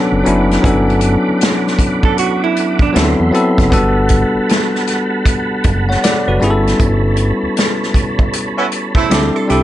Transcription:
0.00 0.22 F#3 medium
0.00 0.23 B3 medium
0.00 0.24 C#4 medium
0.00 0.24 D4 medium
0.00 0.25 A4 medium
0.00 2.91 A4 medium
0.00 2.91 F#5 medium
0.00 2.91 B5 medium
0.00 2.91 D6 medium
0.12 0.24 F#1 medium
0.24 0.59 F#1 medium
0.24 0.61 F#3 medium
0.24 0.61 B3 medium
0.24 0.62 C#4 medium
0.24 0.62 D4 medium
0.24 closed hi-hat medium
0.28 0.63 E4 medium
0.51 snare soft
0.51 closed hi-hat medium
0.62 1.17 G1 loud
0.62 2.08 F#3 medium
0.62 2.09 B3 medium
0.62 2.09 C#4 medium
0.62 2.09 D4 medium
0.62 2.10 A4 medium
0.62 kick loud
0.62 closed hi-hat medium
0.90 closed hi-hat soft
1.01 closed hi-hat medium
1.28 1.33 D2 soft
1.41 snare loud
1.41 closed hi-hat medium
1.67 snare soft
1.79 kick medium
1.79 closed hi-hat medium
2.03 2.18 A4 medium
2.03 kick medium
2.18 2.41 F#4 medium
2.18 closed hi-hat medium
2.44 2.79 E4 medium
2.56 closed hi-hat medium
2.79 3.18 D4 medium
2.79 kick medium
2.93 3.16 D2 medium
2.93 3.30 F#3 medium
2.93 3.31 B3 medium
2.93 3.31 C4 medium
2.93 3.32 E4 medium
2.93 3.71 F#4 medium
2.93 3.71 E5 medium
2.93 3.70 B5 medium
2.93 3.71 C6 medium
2.93 snare loud
2.93 closed hi-hat medium
2.97 3.32 A4 medium
3.20 3.32 E2 medium
3.31 3.69 F#3 medium
3.31 3.69 B3 medium
3.31 3.70 C4 medium
3.31 3.70 E4 medium
3.31 3.71 A4 medium
3.31 closed hi-hat medium
3.58 3.70 F#1 medium
3.58 kick medium
3.58 snare soft
3.58 closed hi-hat medium
3.70 4.25 G1 loud
3.70 5.16 G3 medium
3.70 9.63 G3 medium
3.70 5.16 B3 medium
3.70 5.17 D4 medium
3.70 5.17 F#4 medium
3.70 5.18 A4 medium
3.70 6.38 F#5 medium
3.70 9.06 A5 medium
3.70 9.06 B5 medium
3.70 kick loud
3.70 closed hi-hat medium
4.09 kick medium
4.09 closed hi-hat medium
4.35 4.40 F#1 soft
4.49 snare loud
4.49 closed hi-hat medium
4.75 snare soft
4.87 snare soft
4.87 closed hi-hat medium
5.26 kick medium
5.26 closed hi-hat medium
5.64 5.97 F#1 medium
5.64 kick loud
5.64 closed hi-hat medium
5.89 6.03 C#5 medium
5.89 6.02 F#5 medium
5.89 snare soft
6.04 6.26 A4 medium
6.04 6.26 D5 medium
6.04 snare loud
6.04 closed hi-hat medium
6.28 6.39 F#1 medium
6.28 6.64 F#4 medium
6.28 6.64 B4 medium
6.40 6.74 G1 loud
6.40 7.85 G3 medium
6.40 7.86 B3 medium
6.40 7.86 C#4 medium
6.40 7.87 E4 medium
6.40 9.08 C#5 medium
6.40 closed hi-hat medium
6.44 6.51 G#4 medium
6.50 7.91 A4 loud
6.67 snare soft
6.67 closed hi-hat soft
6.80 7.32 G1 loud
6.80 kick loud
6.80 closed hi-hat medium
7.17 closed hi-hat medium
7.43 7.48 D2 soft
7.57 snare loud
7.57 closed hi-hat medium
7.83 snare soft
7.94 kick medium
7.94 closed hi-hat medium
8.19 kick medium
8.33 closed hi-hat medium
8.57 8.66 B3 medium
8.57 8.66 C#4 medium
8.57 8.66 E4 medium
8.72 closed hi-hat medium
8.95 9.20 A3 medium
8.95 9.20 C4 medium
8.95 9.20 E4 medium
8.95 9.10 E4 medium
8.95 kick medium
9.10 9.31 D2 loud
9.10 9.46 G3 medium
9.10 9.47 C4 medium
9.10 9.47 D4 medium
9.10 9.48 E4 medium
9.10 9.36 G4 medium
9.10 9.63 D5 medium
9.10 9.63 E5 medium
9.10 9.63 C6 medium
9.10 snare loud
9.10 closed hi-hat medium
9.14 9.48 A4 medium
9.36 9.49 A4 medium
9.48 9.63 C2 medium
9.48 9.63 G3 medium
9.48 9.63 C4 medium
9.48 9.63 D4 medium
9.48 9.63 E4 medium
9.48 9.63 G4 medium
9.48 closed hi-hat medium
9.52 9.63 A4 medium

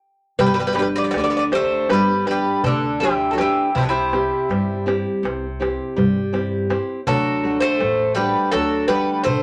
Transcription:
0.39 0.92 G1 medium
0.39 1.12 G3 medium
0.39 0.45 G3 medium
0.39 0.45 B4 medium
0.39 darbuka dum medium
0.46 0.52 G3 medium
0.46 0.52 B4 medium
0.54 0.59 G3 medium
0.54 0.58 B4 medium
0.59 0.66 G3 medium
0.59 0.65 B4 medium
0.67 0.71 G3 medium
0.67 0.73 B4 medium
0.73 0.78 G3 medium
0.73 0.80 B4 medium
0.73 darbuka tek medium
0.77 0.85 G3 medium
0.77 1.37 D4 soft
0.77 1.37 G4 soft
0.77 1.37 B4 medium
0.82 0.87 B4 medium
0.96 1.02 B3 medium
0.96 1.03 D5 medium
1.04 1.09 B3 medium
1.04 1.10 D5 medium
1.11 1.67 D2 medium
1.11 1.16 B3 medium
1.11 1.16 D5 medium
1.11 darbuka tek medium
1.15 1.87 D3 medium
1.15 1.22 D5 medium
1.19 1.23 B3 medium
1.24 1.30 B3 medium
1.24 1.29 D5 medium
1.30 1.36 B3 medium
1.30 1.36 D5 medium
1.37 1.44 B3 medium
1.37 1.43 D5 medium
1.51 1.88 A3 medium
1.51 2.11 D4 medium
1.51 2.12 G4 soft
1.51 1.90 C5 medium
1.51 2.12 D5 medium
1.51 darbuka tek medium
1.71 darbuka tek soft
1.89 2.42 G1 medium
1.89 2.62 G3 medium
1.89 2.26 G3 medium
1.89 2.24 B4 medium
1.89 darbuka tek medium
2.26 2.86 D4 soft
2.26 2.86 G4 soft
2.26 2.86 B4 medium
2.26 2.62 B4 medium
2.26 darbuka tek medium
2.31 2.64 G3 medium
2.64 3.43 D2 medium
2.64 3.36 D3 medium
2.64 3.00 D3 medium
2.64 2.99 A4 medium
2.64 darbuka dum medium
2.82 darbuka tek soft
3.00 3.31 E3 medium
3.00 3.37 D4 medium
3.00 3.29 G4 medium
3.00 3.38 G4 soft
3.00 3.38 B4 medium
3.31 3.38 F#3 medium
3.31 3.38 A4 medium
3.38 3.74 E3 medium
3.38 3.68 D4 soft
3.38 3.73 G4 medium
3.38 3.68 G4 soft
3.38 3.69 B4 medium
3.38 darbuka tek medium
3.75 4.27 C2 medium
3.75 4.48 C3 medium
3.75 3.82 C3 medium
3.75 3.81 E4 medium
3.75 darbuka dum medium
3.81 3.88 B3 medium
3.81 3.88 D4 medium
3.89 4.84 C3 medium
3.89 4.83 E4 medium
4.13 4.72 C4 soft
4.13 4.72 E4 soft
4.13 4.73 G4 medium
4.13 darbuka tek medium
4.49 5.01 G2 medium
4.49 5.22 G3 medium
4.49 darbuka tek medium
4.86 5.45 C4 medium
4.86 5.46 E4 soft
4.86 5.46 G4 medium
4.86 darbuka tek medium
5.07 darbuka tek soft
5.23 5.75 C2 medium
5.23 5.95 C3 medium
5.23 darbuka tek medium
5.60 6.19 C4 soft
5.60 6.19 E4 soft
5.60 6.19 G4 medium
5.60 darbuka tek medium
5.96 6.74 G2 medium
5.96 6.68 G3 medium
5.96 darbuka dum medium
6.17 darbuka tek soft
6.33 6.69 C4 soft
6.33 6.69 E4 soft
6.33 6.69 G4 medium
6.33 darbuka tek medium
6.70 7.00 C4 medium
6.70 7.00 E4 soft
6.70 7.00 G4 medium
6.70 darbuka tek medium
7.07 7.58 D2 medium
7.07 7.78 D3 medium
7.07 7.58 F#3 medium
7.07 7.58 A4 loud
7.07 darbuka dum medium
7.43 7.79 A3 soft
7.43 8.02 D4 soft
7.43 8.03 F#4 medium
7.60 8.13 A3 medium
7.60 8.12 C5 medium
7.80 8.31 A1 medium
7.80 8.16 A3 medium
7.80 darbuka tek medium
8.15 8.50 G3 medium
8.15 8.75 A3 medium
8.15 8.75 D4 soft
8.15 8.75 F#4 medium
8.15 8.51 B4 medium
8.15 darbuka tek medium
8.52 9.04 D2 medium
8.52 9.24 D3 medium
8.52 8.86 F#3 medium
8.52 8.86 A4 loud
8.52 darbuka tek medium
8.88 9.22 G3 medium
8.88 9.26 A3 medium
8.88 9.43 D4 soft
8.88 9.43 F#4 medium
8.88 9.23 B4 medium
8.88 darbuka tek medium
9.23 9.43 A1 medium
9.23 9.43 A3 medium
9.23 9.43 C5 loud
9.23 darbuka dum medium

